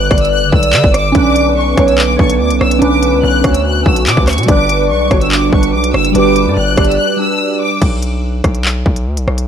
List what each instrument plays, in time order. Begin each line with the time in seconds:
Already playing: ambient pad D3 G3 B4, violin section F#6
0.11 808-style bass G1, soft synth lead D5, kick, cross-stick, closed hi-hat
0.18 closed hi-hat
0.22 violin section E6, closed hi-hat
0.31 violin section F#6
0.42 808-style bass F#1
0.52 808-style bass B1, violin section E6, kick
0.63 closed hi-hat
0.73 808-style bass D3, clap, closed hi-hat
0.84 808-style bass G1, kick
0.94 violin section D6, cross-stick, closed hi-hat
1.12 808-style bass B1, ambient pad B3 B4, synth keys C#4 D4, soft synth lead D5, violin section D6, kick, closed hi-hat
1.18 synth keys B4
1.36 closed hi-hat
1.43 synth keys C#4 D4
1.49 synth keys B4
1.57 violin section C#6
1.75 808-style bass B1, synth keys C#4 D4, soft synth lead C#5, kick, cross-stick, closed hi-hat
1.80 synth keys B4
1.88 violin section E6, closed hi-hat
1.98 violin section D6, clap
2.16 808-style bass B1, synth keys D4 C#5, violin section C#6, kick
2.22 synth keys D5
2.30 closed hi-hat
2.40 808-style bass D2, violin section D6
2.50 808-style bass B1, closed hi-hat
2.61 808-style bass B1, violin section E6, cross-stick
2.71 closed hi-hat
2.79 808-style bass B1, synth keys C#4 D4, soft synth lead B4, violin section D6, closed hi-hat
2.84 synth keys B4
3.03 closed hi-hat
3.10 808-style bass C#2, synth keys C#4 D4
3.16 synth keys B4
3.23 808-style bass B1, violin section F#6
3.42 808-style bass D2, synth keys C#4 D4, soft synth lead C#5, kick, cross-stick, closed hi-hat
3.47 synth keys F#4
3.54 violin section E6, closed hi-hat
3.65 violin section F#6
3.83 808-style bass B1, synth keys C#4 D4, violin section E6, kick
3.89 synth keys F#4
3.96 closed hi-hat
4.07 808-style bass B2, violin section D6, clap, closed hi-hat
4.17 808-style bass D2, kick
4.28 violin section C#6, cross-stick, clap, closed hi-hat, open hi-hat
4.33 closed hi-hat
4.38 808-style bass B2, closed hi-hat
4.43 synth keys G3, closed hi-hat
4.48 808-style bass G1, ambient pad G3 D4 B4, synth keys D4 B4, soft synth lead D5, violin section D6, kick, closed hi-hat
4.69 closed hi-hat
4.77 synth keys G3 D4
4.82 synth keys B4
4.90 808-style bass B1, violin section C#6
5.08 808-style bass G1, synth keys G3 D4, soft synth lead C#5, kick, cross-stick, closed hi-hat
5.14 synth keys F#4
5.21 violin section E6, closed hi-hat
5.32 violin section D6, clap
5.50 808-style bass G1, synth keys G3 D4, violin section C#6, kick
5.55 synth keys B4
5.63 closed hi-hat
5.73 808-style bass B1, violin section D6
5.84 closed hi-hat
5.94 808-style bass F#1, violin section E6, cross-stick
6.05 closed hi-hat
6.12 808-style bass G1, synth keys G3 D4, soft synth lead B4, violin section D6, closed hi-hat
6.17 synth keys G4
6.36 closed hi-hat
6.44 808-style bass G2, synth keys G3 D4
6.49 synth keys D5
6.57 808-style bass G1, violin section F#6
6.75 808-style bass G1, synth keys G3 D4, soft synth lead D5, kick, cross-stick, closed hi-hat
6.80 synth keys B4
6.84 violin section E6, closed hi-hat
6.91 closed hi-hat
6.97 violin section F#6
7.17 synth keys G3 D4, violin section E6
7.22 synth keys B4
7.61 violin section D6
7.82 808-style bass B1, kick, closed hi-hat, crash
8.02 closed hi-hat
8.44 808-style bass B1, kick, cross-stick, closed hi-hat
8.55 closed hi-hat
8.65 clap
8.86 808-style bass B1, kick
8.96 closed hi-hat
9.07 808-style bass D2
9.17 808-style bass B1, closed hi-hat
9.27 808-style bass B1, cross-stick
9.38 closed hi-hat